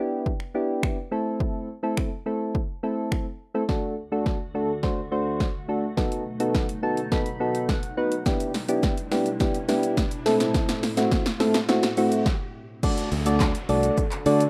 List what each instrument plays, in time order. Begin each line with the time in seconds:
Already playing: synth keys B3 D4 E4 G4
0.26 kick
0.40 finger snap
0.54 synth keys B3 D4 E4 G4
0.83 finger snap, kick
1.11 synth keys A3 C4 E4 A4
1.40 kick
1.83 synth keys A3 C4 E4 A4
1.97 finger snap, kick
2.26 synth keys A3 C4 E4 A4
2.55 kick
2.83 synth keys A3 C4 E4 A4
3.12 finger snap, kick
3.54 synth keys A3 C4 E4 A4
3.69 ambient pad D2 D3 A3 F#4, synth keys A3 D4 F#4 A4, kick, snare, riser
4.12 synth keys A3 D4 F#4 A4
4.26 kick, snare
4.54 synth keys A3 D4 F#4 A4
4.83 synth keys A3 D4 F#4 C5, kick, snare
5.11 synth keys A3 D4 F#4 C5
5.40 kick, snare
5.68 synth keys A3 D4 F#4 A4
5.97 ambient pad B2 F#3 D#4, synth keys B3 D#4 F#4 A4, kick, snare
6.12 closed hi-hat
6.40 synth keys B3 D#4 F#4 A4, closed hi-hat
6.55 kick, snare
6.69 closed hi-hat
6.83 synth keys B3 D#4 F#4 A4 A5
6.97 closed hi-hat
7.12 synth keys B3 D#4 F#4 A4 B5, kick, snare
7.26 closed hi-hat
7.40 synth keys B3 D#4 F#4 A4
7.55 closed hi-hat
7.69 synth keys F#5, kick, snare
7.83 closed hi-hat
7.97 synth keys B3 D#4 F#4 B4 F#5
8.12 closed hi-hat
8.26 ambient pad G3 D4 E4, synth keys B3 D4 E4 G4, kick, snare, shaker
8.40 closed hi-hat, shaker
8.54 snare, open hi-hat, shaker
8.68 synth keys B3 D4 E4 G4, closed hi-hat, shaker
8.83 kick, snare, shaker
8.98 closed hi-hat, shaker
9.11 synth keys B3 D4 E4 G4, snare, open hi-hat, shaker
9.26 closed hi-hat, shaker
9.40 synth keys B3 D4 E4 G4, kick, snare, shaker
9.54 closed hi-hat, shaker
9.68 synth keys B3 D4 E4 G4, snare, open hi-hat, shaker
9.83 closed hi-hat, shaker
9.97 kick, snare, shaker
10.11 closed hi-hat, shaker
10.26 ambient pad A2 A3 C4, synth keys A3 C4 E4 A4, snare, open hi-hat, shaker
10.40 snare, closed hi-hat, shaker
10.54 kick, snare, shaker
10.69 snare, closed hi-hat, shaker
10.83 snare, open hi-hat, shaker
10.97 synth keys A3 C4 E4 F#4, snare, closed hi-hat, shaker
11.11 kick, snare, shaker
11.26 snare, closed hi-hat, shaker
11.40 synth keys A3 C4 E4 A4, snare, open hi-hat, shaker
11.54 snare, closed hi-hat, shaker
11.68 synth keys A3 C4 E4 F#4, snare, shaker
11.83 snare, closed hi-hat, shaker
11.97 synth keys A3 C4 E4 F#4, open hi-hat, shaker
12.12 closed hi-hat, shaker
12.26 kick, snare
12.83 ambient pad D3 D4 F#4 A4, synth keys A3 D4 F#4 A4 D5, kick, crash, downlifter, shaker
12.98 closed hi-hat, shaker
13.12 fingered electric bass D2, open hi-hat, shaker
13.26 synth keys A3 D4 F#4 A4 D5, closed hi-hat, shaker
13.40 kick, snare, clap, shaker
13.55 closed hi-hat, shaker
13.69 fingered electric bass C2, synth keys A3 D4 F#4 A4 D5, open hi-hat, shaker
13.83 closed hi-hat, shaker
13.97 kick, shaker
14.12 clap, closed hi-hat, shaker
14.26 fingered electric bass D3, synth keys A3 D4 F#4 A4 D5, open hi-hat, shaker
14.40 closed hi-hat, shaker